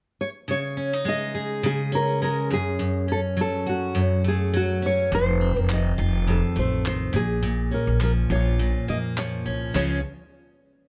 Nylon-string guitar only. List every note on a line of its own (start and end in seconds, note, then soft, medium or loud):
0.21 0.28 C#5 medium
0.51 1.08 C#5 medium
1.08 1.66 D#5 medium
1.66 1.94 G#4 medium
1.95 2.23 A#4 medium
2.24 2.52 A#4 medium
2.53 3.06 G#4 medium
3.12 3.19 A4 medium
3.41 3.66 A4 medium
3.69 4.22 F#4 medium
4.28 4.56 G#4 medium
4.57 4.85 F#4 medium
4.86 5.14 C#5 medium
5.15 5.60 C5 medium
5.60 5.72 A#4 medium
5.73 6.31 D#5 medium
6.30 6.58 A4 medium
6.59 6.86 C5 medium
6.87 7.16 C5 medium
7.16 7.74 G#4 medium
7.74 8.00 A#4 medium
8.03 8.11 A#4 medium
8.32 8.89 C#5 medium
8.90 8.97 D#5 medium
9.19 9.60 C#5 medium
9.76 10.03 C#5 medium